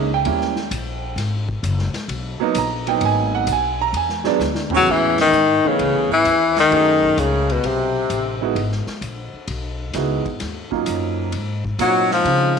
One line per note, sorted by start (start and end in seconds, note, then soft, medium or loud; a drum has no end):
0.00 0.25 C#2 medium
0.00 0.13 E5 medium
0.14 1.15 G5 loud
0.25 0.70 D#2 medium
0.25 0.54 G3 medium
0.25 0.54 A#3 medium
0.25 0.54 C#4 medium
0.25 0.54 E4 medium
0.25 ride medium
0.41 snare soft
0.56 snare medium
0.71 1.15 A#1 loud
0.71 hi-hat pedal medium
0.71 ride medium
1.16 1.62 G#1 medium
1.16 snare soft
1.16 ride medium
1.49 kick medium
1.63 1.93 F#1 medium
1.63 hi-hat pedal medium
1.63 ride medium
1.79 snare soft
1.94 muted upright bass stroke soft
1.94 snare soft
1.94 ride medium
2.08 2.38 B1 medium
2.08 ride medium
2.40 2.54 F#3 medium
2.40 2.54 A#3 medium
2.40 2.55 B3 medium
2.40 2.55 D#4 medium
2.40 muted upright bass stroke soft
2.55 3.00 A#1 loud
2.55 2.88 A#5 medium
2.55 hi-hat pedal medium
2.55 ride medium
2.87 3.45 F#3 medium
2.87 3.45 A#3 medium
2.87 3.46 B3 medium
2.87 3.46 D#4 medium
2.87 3.02 G5 medium
2.87 ride medium
3.01 3.46 G#1 loud
3.01 ride medium
3.05 3.34 G#5 loud
3.35 3.48 F#5 loud
3.47 3.92 B1 loud
3.47 hi-hat pedal medium
3.47 ride medium
3.52 3.81 G#5 loud
3.81 3.95 A#5 loud
3.93 4.38 E2 medium
3.93 ride medium
3.97 4.26 G#5 medium
4.09 snare soft
4.24 4.38 F#3 medium
4.24 4.39 G#3 medium
4.24 4.39 B3 medium
4.24 4.40 D4 loud
4.24 4.35 D5 loud
4.24 snare medium
4.39 4.85 D2 loud
4.39 snare medium
4.39 hi-hat pedal medium
4.55 snare medium
4.70 5.30 A2 medium
4.70 5.30 E3 medium
4.70 5.30 G#3 medium
4.70 5.31 B3 medium
4.70 5.30 C#4 medium
4.70 floor tom loud
4.74 4.91 F#3 medium
4.74 4.93 F#3 loud
4.86 5.31 E2 medium
4.86 5.20 E3 medium
4.86 kick medium
4.86 crash medium
4.91 5.20 E3 loud
5.18 5.69 D#3 medium
5.18 5.70 D#3 medium
5.18 snare medium
5.18 ride medium
5.32 5.62 G#2 medium
5.32 hi-hat pedal medium
5.64 6.11 C#3 medium
5.64 6.22 E3 medium
5.64 6.23 A3 medium
5.64 6.23 B3 medium
5.64 6.23 C#4 medium
5.64 6.23 G#4 medium
5.64 muted upright bass stroke soft
5.68 6.12 C#3 medium
5.79 5.94 C#2 medium
5.79 ride medium
5.94 6.09 A1 medium
6.09 6.24 G#1 medium
6.09 6.54 E3 medium
6.14 6.55 E3 loud
6.25 6.70 D#2 medium
6.25 hi-hat pedal medium
6.25 ride medium
6.57 7.21 D#3 medium
6.57 7.22 D#3 medium
6.57 snare medium
6.57 ride soft
6.71 7.16 F#2 medium
6.71 7.43 F#3 medium
6.71 7.43 A3 medium
6.71 7.43 C#4 medium
6.71 7.43 G#4 medium
6.71 7.43 E5 medium
6.71 ride medium
7.03 kick medium
7.17 7.62 C#2 medium
7.17 7.51 C#3 medium
7.17 7.54 C#3 medium
7.17 hi-hat pedal medium
7.17 ride medium
7.49 7.66 B2 medium
7.49 7.68 B2 medium
7.49 ride soft
7.64 8.09 B1 medium
7.64 8.42 C3 medium
7.64 8.43 C3 medium
7.64 ride medium
8.10 8.55 A1 medium
8.10 hi-hat pedal medium
8.10 ride medium
8.41 8.55 G#3 medium
8.41 8.55 B3 medium
8.41 8.55 D#4 medium
8.41 8.55 E4 medium
8.41 8.56 F#4 medium
8.55 8.85 G#1 medium
8.55 ride medium
8.72 snare soft
8.87 muted upright bass stroke soft
8.87 snare soft
9.01 9.31 A#1 medium
9.01 hi-hat pedal soft
9.01 ride medium
9.33 muted upright bass stroke soft
9.48 9.93 B1 medium
9.48 ride medium
9.94 10.24 C#2 medium
9.94 10.23 G#3 medium
9.94 10.23 B3 medium
9.94 10.23 D#4 medium
9.94 10.24 E4 medium
9.94 10.24 F#4 medium
9.94 snare soft
9.94 hi-hat pedal medium
9.94 ride medium
10.26 kick medium
10.26 ride soft
10.40 10.86 D#2 medium
10.40 snare soft
10.40 ride medium
10.71 11.30 F#3 medium
10.71 11.30 A#3 medium
10.71 11.30 C#4 medium
10.71 11.30 D#4 medium
10.71 11.31 F4 medium
10.71 kick medium
10.86 11.32 F#2 medium
10.86 hi-hat pedal medium
10.86 ride medium
11.32 11.78 G#2 medium
11.32 ride medium
11.65 kick medium
11.78 12.24 A#2 medium
11.78 12.26 F#3 medium
11.78 12.10 F#3 medium
11.78 12.26 A#3 medium
11.78 12.25 C4 medium
11.78 12.25 D#4 medium
11.78 12.26 F4 medium
11.78 hi-hat pedal medium
11.78 ride medium
12.11 12.59 F3 medium
12.11 snare medium
12.25 12.59 C#3 medium
12.25 12.54 G#3 medium
12.25 12.54 C4 medium
12.25 12.55 C#4 medium
12.25 12.55 D#4 soft
12.25 12.55 F4 medium
12.25 ride medium